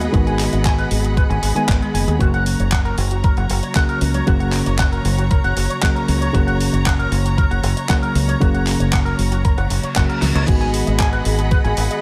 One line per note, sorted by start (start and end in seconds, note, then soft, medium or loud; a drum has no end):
0.00 0.10 G#3 medium
0.00 0.10 B3 medium
0.00 0.10 F#4 loud
0.00 2.17 G#4 medium
0.00 2.16 D#5 medium
0.00 0.07 D#5 loud
0.00 2.17 F#5 medium
0.00 2.17 B5 medium
0.00 closed hi-hat medium
0.12 0.47 G#1 loud
0.12 1.53 D#3 loud
0.12 1.53 G#3 medium
0.12 1.53 B3 medium
0.12 1.54 F#4 loud
0.12 0.20 G#4 loud
0.12 kick loud
0.12 closed hi-hat soft
0.27 0.36 G#5 medium
0.27 closed hi-hat soft
0.39 clap medium
0.39 open hi-hat loud
0.53 0.86 G#1 medium
0.53 0.56 D#5 medium
0.53 closed hi-hat medium
0.65 0.72 G#5 loud
0.65 kick loud
0.65 clap loud
0.65 closed hi-hat soft
0.78 0.88 B4 loud
0.78 closed hi-hat soft
0.91 1.25 G#1 loud
0.91 open hi-hat loud
1.04 1.08 G#4 medium
1.04 closed hi-hat medium
1.17 1.24 B4 loud
1.17 kick loud
1.17 closed hi-hat soft
1.30 1.39 G#1 loud
1.30 1.39 G#5 medium
1.30 closed hi-hat soft
1.42 1.52 G#1 medium
1.42 1.49 G#4 medium
1.42 open hi-hat loud
1.55 2.17 D#3 medium
1.55 2.17 G#3 medium
1.55 2.18 B3 medium
1.55 2.18 G#4 loud
1.55 1.62 G#5 loud
1.55 closed hi-hat medium
1.68 1.79 G#1 loud
1.68 1.75 B4 medium
1.68 kick loud
1.68 clap loud
1.68 closed hi-hat soft
1.82 1.88 G#3 loud
1.82 closed hi-hat soft
1.94 2.04 F#1 medium
1.94 1.98 G#5 medium
1.94 open hi-hat loud
2.08 2.17 D#2 loud
2.08 2.14 G#4 medium
2.08 closed hi-hat soft
2.19 2.54 F#1 loud
2.19 3.72 C#3 loud
2.19 3.72 F#3 medium
2.19 10.44 F#3 medium
2.19 3.72 A#3 medium
2.19 2.27 F#4 loud
2.19 10.44 C#5 medium
2.19 10.44 A#5 medium
2.19 kick loud
2.19 closed hi-hat soft
2.34 2.43 F#5 medium
2.34 closed hi-hat soft
2.46 open hi-hat loud
2.60 2.93 F#1 medium
2.60 2.64 C#5 medium
2.60 closed hi-hat medium
2.72 2.79 F#5 loud
2.72 kick loud
2.72 clap loud
2.72 closed hi-hat soft
2.85 2.95 A#4 loud
2.85 closed hi-hat soft
2.98 3.32 F#1 loud
2.98 open hi-hat medium
3.11 3.15 F#4 medium
3.11 closed hi-hat medium
3.24 3.31 A#4 loud
3.24 kick loud
3.24 closed hi-hat medium
3.37 3.46 F#1 loud
3.37 3.47 F#5 medium
3.37 closed hi-hat soft
3.50 3.60 F#1 medium
3.50 open hi-hat loud
3.63 3.67 C#5 medium
3.63 closed hi-hat soft
3.75 4.24 C#3 medium
3.75 4.24 F#3 medium
3.75 4.24 A#3 medium
3.75 3.82 F#5 loud
3.75 kick loud
3.75 clap loud
3.75 closed hi-hat soft
3.89 3.98 A#4 loud
3.89 closed hi-hat soft
4.01 4.21 C#2 loud
4.01 open hi-hat medium
4.14 4.21 C#5 loud
4.14 closed hi-hat medium
4.26 4.61 F#1 loud
4.26 5.79 C#3 medium
4.26 5.79 F#3 medium
4.26 5.80 A#3 medium
4.26 4.34 F#4 loud
4.26 kick loud
4.26 closed hi-hat medium
4.40 4.50 F#5 medium
4.40 closed hi-hat soft
4.53 clap medium
4.53 open hi-hat loud
4.66 5.00 F#1 medium
4.66 4.70 C#5 medium
4.66 closed hi-hat medium
4.79 4.86 F#5 loud
4.79 kick loud
4.79 clap loud
4.79 closed hi-hat soft
4.92 5.02 A#4 loud
4.92 closed hi-hat soft
5.05 5.39 F#1 loud
5.05 open hi-hat medium
5.18 5.22 F#4 medium
5.18 closed hi-hat medium
5.31 5.37 A#4 loud
5.31 kick loud
5.31 closed hi-hat medium
5.44 5.53 F#1 loud
5.44 5.53 F#5 medium
5.44 closed hi-hat soft
5.57 5.66 F#1 medium
5.57 open hi-hat loud
5.70 5.74 C#5 medium
5.70 closed hi-hat medium
5.82 6.31 C#3 medium
5.82 6.31 F#3 medium
5.82 6.31 A#3 medium
5.82 5.89 F#5 loud
5.82 kick loud
5.82 clap loud
5.82 closed hi-hat medium
5.95 6.05 A#4 loud
5.95 closed hi-hat soft
6.08 6.28 C#2 loud
6.08 open hi-hat medium
6.21 6.28 C#5 loud
6.21 closed hi-hat medium
6.33 6.68 F#1 loud
6.33 7.86 C#3 loud
6.33 7.86 F#3 medium
6.33 7.87 A#3 medium
6.33 6.41 F#4 loud
6.33 kick loud
6.33 closed hi-hat medium
6.47 6.57 F#5 medium
6.47 closed hi-hat soft
6.61 open hi-hat loud
6.73 7.06 F#1 medium
6.73 6.77 C#5 medium
6.73 closed hi-hat medium
6.86 6.92 F#5 loud
6.86 kick loud
6.86 clap loud
6.86 closed hi-hat medium
6.99 7.09 A#4 loud
6.99 closed hi-hat soft
7.12 7.45 F#1 loud
7.12 open hi-hat medium
7.25 7.29 F#4 medium
7.25 closed hi-hat medium
7.38 7.44 A#4 loud
7.38 kick loud
7.38 closed hi-hat medium
7.51 7.60 F#1 loud
7.51 7.60 F#5 medium
7.51 closed hi-hat soft
7.63 7.73 F#1 medium
7.63 open hi-hat loud
7.77 7.80 C#5 medium
7.77 closed hi-hat medium
7.89 8.38 C#3 medium
7.89 8.38 F#3 medium
7.89 8.38 A#3 medium
7.89 7.96 F#5 loud
7.89 kick loud
7.89 clap loud
7.89 closed hi-hat medium
8.02 8.12 A#4 loud
8.02 closed hi-hat soft
8.15 8.34 C#2 loud
8.15 open hi-hat medium
8.28 8.35 C#5 loud
8.28 closed hi-hat medium
8.40 8.75 F#1 loud
8.40 9.93 C#3 loud
8.40 9.93 F#3 medium
8.40 9.93 A#3 medium
8.40 8.48 F#4 loud
8.40 kick loud
8.40 closed hi-hat medium
8.54 8.64 F#5 medium
8.54 closed hi-hat soft
8.67 clap medium
8.67 open hi-hat loud
8.80 9.13 F#1 medium
8.80 8.84 C#5 medium
8.80 closed hi-hat medium
8.92 8.99 F#5 loud
8.92 kick loud
8.92 clap loud
8.92 closed hi-hat medium
9.05 9.15 A#4 loud
9.05 closed hi-hat soft
9.19 9.52 F#1 loud
9.19 open hi-hat medium
9.32 9.36 F#4 medium
9.32 closed hi-hat medium
9.45 9.51 A#4 loud
9.45 kick loud
9.45 closed hi-hat medium
9.45 reverse cymbal medium
9.58 9.67 F#1 loud
9.58 9.67 F#5 medium
9.58 closed hi-hat soft
9.70 9.80 F#1 medium
9.70 open hi-hat loud
9.83 9.87 C#5 medium
9.83 closed hi-hat medium
9.96 10.06 F#1 loud
9.96 10.45 C#3 medium
9.96 10.45 F#3 medium
9.96 10.45 A#3 medium
9.96 10.03 F#5 loud
9.96 kick loud
9.96 clap loud
9.96 closed hi-hat medium
10.09 10.19 A#4 loud
10.09 closed hi-hat soft
10.22 10.32 C#2 medium
10.22 snare medium
10.22 open hi-hat medium
10.35 10.45 C#2 loud
10.35 10.41 C#5 loud
10.35 closed hi-hat medium
10.47 10.82 G#1 loud
10.47 11.99 D#3 loud
10.47 12.00 G#3 medium
10.47 12.00 B3 medium
10.47 12.00 F#4 loud
10.47 10.54 G#4 loud
10.47 12.02 G#4 medium
10.47 12.02 D#5 medium
10.47 12.02 F#5 medium
10.47 12.02 B5 medium
10.47 kick loud
10.47 closed hi-hat medium
10.47 crash medium
10.61 10.70 G#5 medium
10.61 closed hi-hat soft
10.74 open hi-hat loud
10.87 11.20 G#1 medium
10.87 10.91 D#5 medium
10.87 closed hi-hat medium
10.99 11.06 G#5 loud
10.99 kick loud
10.99 clap loud
10.99 closed hi-hat medium
11.13 11.22 B4 loud
11.13 closed hi-hat soft
11.25 11.59 G#1 loud
11.25 open hi-hat medium
11.38 11.42 G#4 medium
11.38 closed hi-hat medium
11.51 11.58 B4 loud
11.51 kick loud
11.51 closed hi-hat medium
11.64 11.74 G#1 loud
11.64 11.74 G#5 medium
11.64 closed hi-hat soft
11.77 11.87 G#1 medium
11.77 open hi-hat loud
11.91 11.94 D#5 medium
11.91 closed hi-hat medium